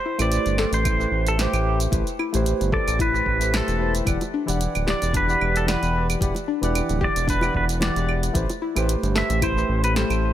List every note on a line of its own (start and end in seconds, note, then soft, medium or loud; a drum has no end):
0.00 0.22 C5 loud
0.05 0.31 E4 medium
0.18 0.39 A1 loud
0.18 0.55 A3 medium
0.18 0.56 E4 medium
0.18 0.56 G4 medium
0.18 0.56 B4 medium
0.18 0.57 C5 loud
0.18 0.74 D5 loud
0.18 closed hi-hat soft
0.18 claves medium
0.18 shaker medium
0.32 closed hi-hat medium
0.32 shaker medium
0.46 0.65 G1 medium
0.46 closed hi-hat soft
0.46 shaker soft
0.57 0.96 A3 medium
0.57 0.96 E4 medium
0.57 0.97 G4 medium
0.57 0.83 A4 loud
0.57 0.97 B4 medium
0.57 0.98 C5 medium
0.57 snare medium
0.72 1.06 A1 loud
0.72 1.29 C5 loud
0.72 closed hi-hat soft
0.72 shaker medium
0.85 1.01 E4 medium
0.85 kick loud
0.85 closed hi-hat medium
0.85 claves medium
0.85 shaker medium
0.98 1.35 A3 medium
0.98 1.36 E4 medium
0.98 1.36 G4 medium
0.98 1.36 B4 medium
0.98 1.37 C5 medium
0.98 shaker soft
1.11 1.47 A1 loud
1.27 1.40 A4 medium
1.27 closed hi-hat soft
1.27 shaker medium
1.37 1.89 A3 medium
1.37 1.89 E4 medium
1.37 1.90 G4 medium
1.37 1.78 G4 medium
1.37 1.90 B4 medium
1.37 1.91 C5 medium
1.37 snare medium
1.37 closed hi-hat soft
1.37 shaker medium
1.53 1.87 A1 medium
1.53 closed hi-hat soft
1.53 claves medium
1.53 shaker soft
1.80 closed hi-hat soft
1.80 shaker medium
1.90 2.03 A1 loud
1.90 2.04 A3 medium
1.90 2.04 E4 medium
1.90 2.05 G4 medium
1.90 2.05 B4 medium
1.90 2.06 C5 medium
1.90 kick loud
1.90 closed hi-hat medium
1.90 shaker medium
2.07 closed hi-hat soft
2.07 shaker soft
2.19 2.45 E4 medium
2.19 claves medium
2.32 2.53 A1 loud
2.32 2.69 A3 medium
2.32 2.70 E4 medium
2.32 2.70 G4 medium
2.32 2.71 B4 medium
2.32 2.71 C5 loud
2.32 closed hi-hat soft
2.32 shaker medium
2.46 closed hi-hat medium
2.46 shaker medium
2.61 2.80 G1 medium
2.61 closed hi-hat soft
2.61 shaker soft
2.71 3.10 A3 medium
2.71 3.10 E4 medium
2.71 2.97 A4 loud
2.71 3.11 B4 medium
2.71 3.12 C5 medium
2.71 3.01 D5 loud
2.71 kick loud
2.87 3.21 A1 loud
2.87 closed hi-hat soft
2.87 claves medium
2.87 shaker medium
2.99 3.15 E4 medium
2.99 3.56 B4 loud
2.99 kick loud
2.99 closed hi-hat medium
2.99 shaker medium
3.13 3.37 A3 medium
3.13 3.38 E4 medium
3.13 3.38 G4 medium
3.13 3.38 B4 medium
3.13 3.39 C5 medium
3.13 shaker soft
3.26 3.61 A1 medium
3.26 kick medium
3.39 3.76 A3 medium
3.39 3.77 E4 medium
3.39 3.77 G4 medium
3.39 3.78 B4 medium
3.39 3.78 C5 medium
3.39 closed hi-hat soft
3.39 shaker medium
3.54 3.93 A4 medium
3.54 snare medium
3.54 closed hi-hat soft
3.54 claves medium
3.54 shaker medium
3.68 4.02 E1 medium
3.68 closed hi-hat soft
3.68 shaker soft
3.78 4.03 A3 medium
3.78 4.03 E4 medium
3.78 4.04 G4 medium
3.78 4.04 B4 medium
3.78 4.05 C5 medium
3.95 closed hi-hat soft
3.95 shaker medium
4.05 4.17 E1 loud
4.05 4.18 E3 medium
4.05 4.18 E4 medium
4.05 4.19 G4 medium
4.05 4.19 D5 medium
4.05 4.20 F#5 loud
4.05 kick loud
4.05 closed hi-hat soft
4.05 claves medium
4.05 shaker medium
4.21 closed hi-hat soft
4.21 high bongo medium
4.21 shaker soft
4.34 4.59 D4 medium
4.46 4.68 E1 loud
4.46 4.83 E3 medium
4.46 4.84 E4 medium
4.46 4.84 G4 medium
4.46 4.84 D5 medium
4.46 4.85 F#5 loud
4.46 closed hi-hat soft
4.46 shaker medium
4.61 closed hi-hat medium
4.61 shaker medium
4.75 4.95 D1 medium
4.75 closed hi-hat soft
4.75 claves medium
4.75 shaker soft
4.85 5.24 E3 medium
4.85 5.24 E4 medium
4.85 5.25 G4 medium
4.85 5.11 G4 loud
4.85 5.25 D5 medium
4.85 5.26 F#5 medium
4.85 snare medium
4.90 5.16 D5 loud
5.02 5.36 E1 loud
5.02 closed hi-hat soft
5.02 shaker medium
5.14 5.29 D4 medium
5.14 5.58 B4 loud
5.14 kick loud
5.14 closed hi-hat medium
5.14 shaker medium
5.27 5.64 E3 medium
5.27 5.64 E4 medium
5.27 5.65 G4 medium
5.27 5.65 D5 medium
5.27 5.65 F#5 medium
5.27 shaker soft
5.41 5.76 E1 loud
5.41 claves medium
5.56 5.69 A4 medium
5.56 closed hi-hat soft
5.56 shaker medium
5.66 6.17 E3 medium
5.66 6.18 E4 medium
5.66 6.18 G4 medium
5.66 6.07 B4 medium
5.66 6.18 D5 medium
5.66 6.19 F#5 medium
5.66 snare medium
5.66 closed hi-hat medium
5.66 shaker medium
5.82 6.16 E1 medium
5.82 closed hi-hat soft
5.82 shaker soft
6.10 closed hi-hat soft
6.10 claves medium
6.10 shaker medium
6.20 6.32 E1 loud
6.20 6.33 E3 medium
6.20 6.33 E4 medium
6.20 6.34 G4 medium
6.20 6.34 D5 medium
6.20 6.34 F#5 loud
6.20 kick loud
6.20 closed hi-hat medium
6.20 shaker medium
6.35 closed hi-hat soft
6.35 high bongo medium
6.35 shaker soft
6.48 6.73 D4 medium
6.61 6.82 E1 loud
6.61 6.98 E3 medium
6.61 6.98 E4 medium
6.61 6.99 G4 medium
6.61 6.99 D5 medium
6.61 7.00 F#5 loud
6.61 closed hi-hat soft
6.61 shaker medium
6.75 closed hi-hat medium
6.75 claves medium
6.75 shaker medium
6.89 7.09 D1 medium
6.89 closed hi-hat soft
6.89 shaker soft
6.99 7.38 E3 medium
6.99 7.39 E4 medium
6.99 7.25 G4 loud
6.99 7.39 G4 medium
6.99 7.40 D5 medium
6.99 7.40 F#5 medium
6.99 kick loud
7.04 7.29 D5 loud
7.16 7.50 E1 loud
7.16 closed hi-hat soft
7.16 shaker medium
7.27 7.43 D4 medium
7.27 7.55 B4 loud
7.27 kick loud
7.27 closed hi-hat medium
7.27 shaker medium
7.41 7.78 E3 medium
7.41 7.78 E4 medium
7.41 7.79 G4 medium
7.41 7.79 D5 medium
7.41 7.80 F#5 medium
7.41 high bongo medium
7.41 claves medium
7.41 shaker soft
7.54 7.90 E1 loud
7.54 7.64 B4 medium
7.54 kick medium
7.69 closed hi-hat soft
7.69 shaker medium
7.79 8.31 E3 medium
7.79 8.32 E4 medium
7.79 8.32 G4 medium
7.79 8.33 D5 medium
7.79 8.21 D5 medium
7.79 8.33 F#5 loud
7.79 snare medium
7.79 closed hi-hat medium
7.79 high bongo medium
7.79 shaker soft
7.96 8.30 E1 medium
7.96 closed hi-hat soft
7.96 shaker soft
8.09 claves medium
8.23 closed hi-hat soft
8.23 shaker medium
8.33 8.46 A1 loud
8.33 8.46 A3 medium
8.33 8.47 E4 medium
8.33 8.47 G4 medium
8.33 8.48 B4 medium
8.33 8.48 C5 loud
8.33 kick loud
8.33 closed hi-hat medium
8.33 shaker soft
8.50 closed hi-hat soft
8.50 high bongo soft
8.50 shaker soft
8.62 8.88 E4 medium
8.75 8.96 A1 loud
8.75 9.12 A3 medium
8.75 9.12 E4 medium
8.75 9.13 G4 medium
8.75 9.13 B4 medium
8.75 9.14 C5 loud
8.75 closed hi-hat soft
8.75 claves medium
8.75 shaker medium
8.89 closed hi-hat medium
8.89 shaker medium
9.03 9.22 G1 medium
9.03 closed hi-hat soft
9.03 shaker soft
9.14 9.53 A3 medium
9.14 9.53 E4 medium
9.14 9.53 G4 medium
9.14 9.40 A4 loud
9.14 9.54 B4 medium
9.14 9.54 C5 medium
9.14 9.44 E5 loud
9.14 snare medium
9.30 9.64 A1 loud
9.30 closed hi-hat soft
9.30 shaker medium
9.42 9.58 E4 medium
9.42 9.84 C5 loud
9.42 kick loud
9.42 closed hi-hat medium
9.42 claves medium
9.42 shaker medium
9.56 9.92 A3 medium
9.56 9.93 E4 medium
9.56 9.93 G4 medium
9.56 9.94 B4 medium
9.56 9.94 C5 medium
9.56 shaker soft
9.69 10.04 A1 loud
9.84 9.97 B4 medium
9.84 closed hi-hat soft
9.84 shaker medium
9.94 10.33 A3 medium
9.94 10.33 E4 medium
9.94 10.33 G4 medium
9.94 10.33 A4 medium
9.94 10.33 C5 medium
9.94 10.33 C5 loud
9.94 snare medium
9.94 closed hi-hat medium
9.94 shaker soft
10.10 10.33 A1 medium
10.10 closed hi-hat soft
10.10 claves medium
10.10 shaker soft